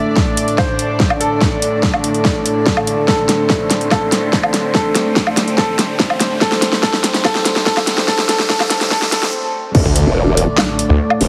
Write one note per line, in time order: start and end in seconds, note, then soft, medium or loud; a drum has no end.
0.00 9.71 A2 medium
0.00 9.71 D3 medium
0.00 9.71 A3 medium
0.00 3.04 D4 medium
0.00 9.33 D4 medium
0.00 9.33 A4 medium
0.00 3.06 D5 medium
0.00 9.33 D5 medium
0.00 0.50 E5 loud
0.00 9.33 A5 medium
0.00 riser medium
0.16 kick medium
0.16 snare medium
0.37 closed hi-hat medium
0.48 closed hi-hat soft
0.58 1.12 C5 medium
0.58 kick loud
0.58 snare medium
0.58 low woodblock medium
0.79 closed hi-hat medium
1.00 kick loud
1.00 snare medium
1.10 low woodblock medium
1.20 3.00 A4 medium
1.20 closed hi-hat medium
1.41 kick medium
1.41 snare medium
1.62 closed hi-hat medium
1.83 kick medium
1.83 snare medium
1.94 low woodblock medium
2.04 closed hi-hat medium
2.14 closed hi-hat soft
2.25 kick loud
2.25 snare medium
2.46 closed hi-hat medium
2.66 kick loud
2.66 snare medium
2.77 low woodblock medium
2.87 closed hi-hat medium
3.08 9.71 C4 medium
3.08 3.83 A4 medium
3.08 9.73 C5 medium
3.08 kick medium
3.08 snare medium
3.29 snare medium
3.29 closed hi-hat medium
3.50 kick medium
3.50 snare medium
3.71 snare medium
3.71 closed hi-hat medium
3.81 closed hi-hat soft
3.91 4.67 A4 medium
3.91 kick loud
3.91 snare medium
3.91 low woodblock medium
4.12 snare medium
4.12 closed hi-hat medium
4.33 kick loud
4.33 snare medium
4.43 low woodblock medium
4.54 snare medium
4.54 closed hi-hat medium
4.75 5.50 A4 medium
4.75 kick loud
4.75 snare medium
4.95 snare medium
4.95 closed hi-hat medium
5.16 kick medium
5.16 snare medium
5.27 low woodblock medium
5.37 snare medium
5.37 closed hi-hat medium
5.48 closed hi-hat soft
5.58 6.33 A4 medium
5.58 kick loud
5.58 snare medium
5.79 snare medium
5.79 closed hi-hat medium
6.00 kick loud
6.00 snare medium
6.10 low woodblock medium
6.20 snare medium
6.20 closed hi-hat medium
6.41 6.81 A4 loud
6.41 kick medium
6.41 snare medium
6.52 snare medium
6.62 snare medium
6.62 closed hi-hat medium
6.73 snare medium
6.83 7.23 A4 loud
6.83 kick loud
6.83 snare loud
6.93 snare medium
7.04 snare loud
7.04 closed hi-hat medium
7.14 snare medium
7.14 closed hi-hat soft
7.25 7.65 A4 loud
7.25 kick loud
7.25 snare medium
7.25 low woodblock medium
7.35 snare medium
7.46 snare loud
7.46 closed hi-hat medium
7.56 snare medium
7.66 8.06 A4 loud
7.66 kick loud
7.66 snare loud
7.77 snare medium
7.77 low woodblock medium
7.87 snare loud
7.87 closed hi-hat medium
7.98 snare medium
8.08 8.27 A4 loud
8.08 kick medium
8.08 snare loud
8.18 snare loud
8.29 8.48 A4 loud
8.29 snare loud
8.29 closed hi-hat medium
8.39 snare medium
8.50 8.69 A4 loud
8.50 kick medium
8.50 snare loud
8.60 snare medium
8.60 low woodblock medium
8.70 8.90 A4 loud
8.70 snare loud
8.70 closed hi-hat medium
8.81 snare medium
8.81 closed hi-hat soft
8.91 9.11 A4 loud
8.91 kick loud
8.91 snare loud
9.02 snare loud
9.12 9.32 A4 loud
9.12 snare loud
9.12 closed hi-hat medium
9.23 snare loud
9.75 9.84 D2 loud
9.75 11.28 A2 medium
9.75 11.28 D3 medium
9.75 11.28 A3 medium
9.75 11.28 D4 medium
9.75 11.28 D5 medium
9.75 kick loud
9.75 crash loud
9.75 impact medium
9.85 10.04 D2 medium
9.96 closed hi-hat medium
10.06 10.46 E1 loud
10.37 closed hi-hat medium
10.58 snare loud
10.58 clap medium
10.58 low woodblock medium
10.79 closed hi-hat medium
10.89 10.98 D2 loud
11.10 low woodblock medium
11.21 11.28 F1 loud
11.21 open hi-hat medium